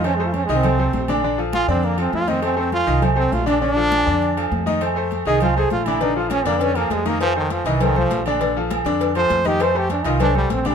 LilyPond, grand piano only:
\new Staff \with { instrumentName = "Grand piano" } { \time 4/4 \key bes \major \tempo 4 = 201 <a a' c''>8 <a a' c''>4 <ees ees' ees''>8 <a a' c''>8 <a a' c''>4 <d d' d''>8 | <d d' d''>8 <f f' a'>4 <d d' d''>4 <f f' a'>4 <ees ees' ees''>8 | <a a' c''>8 <a a' c''>4 <ees ees' ees''>8 <a a' c''>8 <a a' c''>4 <d d' d''>8 | <d d' d''>8 <f f' a'>4 <d d' d''>4 <f f' a'>4 <ees ees' ees''>8 |
<a a' c''>8 <a a' c''>4 <ees ees' ees''>8 <a a' c''>8 <a a' c''>4 <d d' d''>8 | <d d' d''>8 <f f' a'>4 <d d' d''>4 <f f' a'>4 <ees ees' ees''>8 | <a a' c''>8 <a a' c''>4 <ees ees' ees''>8 <a a' c''>8 <a a' c''>4 <d d' d''>8 | <d d' d''>8 <f f' a'>4 <d d' d''>4 <f f' a'>4 <ees ees' ees''>8 |
<a a' c''>8 <a a' c''>4 <ees ees' ees''>8 <a a' c''>8 <a a' c''>4 <d d' d''>8 | }